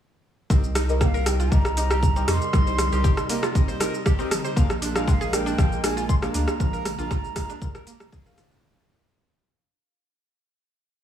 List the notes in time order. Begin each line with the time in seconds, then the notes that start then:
0.50 C2 C3 G3 C4 D#4 G4 A#4 D#5, kick, shaker
0.64 shaker
0.75 D#4, cross-stick, open hi-hat, shaker
0.89 C4 D#4 G4 A#4 D#5, shaker
1.01 A#3 G5, kick, cross-stick, shaker
1.05 F5
1.14 A#4, shaker
1.26 C4 D#4 G4 A#4 D#5 G5, cross-stick, open hi-hat, shaker
1.40 F4, shaker
1.52 C2 G3 C4 D#4 G4 A#4 D#5 A#5, kick, shaker
1.65 cross-stick, shaker
1.77 C4 D#4 G4 A#4 D#5, open hi-hat, shaker
1.91 G4, cross-stick, shaker
2.03 kick, shaker
2.16 C4 D#4 G4 A#4 D#5, shaker
2.28 F2 D#4 C6 D6, cross-stick, open hi-hat, shaker
2.42 shaker
2.53 C2 G3 C4 D#4 G4 A#4 D#5, kick, cross-stick, shaker
2.67 C5, shaker
2.78 cross-stick, open hi-hat, mid tom, shaker
2.92 C2 C4 D#4 G4 A#4 D#5, shaker
3.04 G4, kick, shaker
3.17 cross-stick, shaker
3.29 A#3 C4 D#4 G4 A#4 D#5, open hi-hat, shaker
3.43 F4, cross-stick, shaker
3.55 C4 D#4 G4 A#4 D#5, kick, shaker
3.68 C5, shaker
3.80 C4 D#4 G4 A#4 D#5, cross-stick, open hi-hat, shaker
3.94 shaker
4.06 G4, kick, cross-stick, shaker
4.19 C4 D#4 G4 A#4 D#5, shaker
4.31 cross-stick, open hi-hat, mid tom, shaker
4.45 C5, shaker
4.56 A#1 G#3 A#3 D4 F4 G#4 A#4 F5, kick, shaker
4.70 cross-stick, shaker
4.82 D4, open hi-hat, shaker
4.96 D4 F4 G#4 A#4 F5, cross-stick, shaker
5.08 G#3 F5 G5, kick, shaker
5.21 G#4, shaker
5.33 D4 F4 G#4 A#4 F5 G5, cross-stick, open hi-hat, shaker
5.46 D4, shaker
5.58 A#1 F3 D4 F4 G#4 A#4 F5, kick, cross-stick, shaker
5.72 shaker
5.83 D4 F4 G#4 A#4 F5 G#5, cross-stick, open hi-hat, shaker
5.97 F4, shaker
6.08 C6, kick, shaker
6.22 A#3 D4 F4 G#4 A#4 F5, cross-stick, shaker
6.33 D2 D4 A#5, open hi-hat, shaker
6.48 cross-stick, shaker
6.60 A#1 F3 D4 F4 G#4 A#4 F5, kick, shaker
6.73 A#4, shaker
6.85 cross-stick, open hi-hat, mid tom, shaker
6.99 A#1 D4 F4 G#4 A#4 F5, shaker
7.11 F4, kick, cross-stick, shaker
7.24 shaker
7.36 G#3 D4 F4 G#4 A#4 F5, kick, cross-stick, open hi-hat, shaker
7.50 D4, shaker
7.61 D4 F4 G#4 A#4 F5, kick, shaker
7.75 A#4, cross-stick, shaker
7.87 A#3, open hi-hat, shaker
8.00 cross-stick, shaker
8.12 F1 G#4, kick, shaker
8.26 D4 F4 G#4 A#4 F5, shaker
8.38 F4, cross-stick, open hi-hat, mid tom, shaker
8.51 D4, shaker